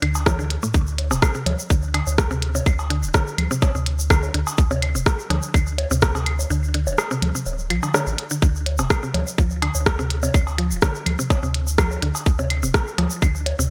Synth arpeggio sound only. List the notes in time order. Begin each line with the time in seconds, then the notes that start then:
0.02 D3
0.26 E3
0.39 D3
0.63 A2
0.74 D3
1.11 C3
1.35 C3
1.70 D3
1.94 D3
2.31 C3
2.55 C3
2.90 D3
3.14 D3
3.51 C3
3.75 C3
4.10 D3
4.34 D3
4.71 C3
4.95 C3
5.30 D3
5.54 D3
5.91 C3
6.15 C3
6.50 D3
6.74 D3
7.11 C3
7.35 C3
7.70 F3
7.83 D3
7.94 D3
8.31 D3
8.42 D3
8.79 C3
9.03 C3
9.38 F3
9.62 D3
9.99 C3
10.23 C3
10.58 F3
10.82 D3
11.19 C3
11.43 C3
11.78 F3
12.02 D3
12.39 C3
12.63 C3
12.98 F3
13.22 D3
13.59 C3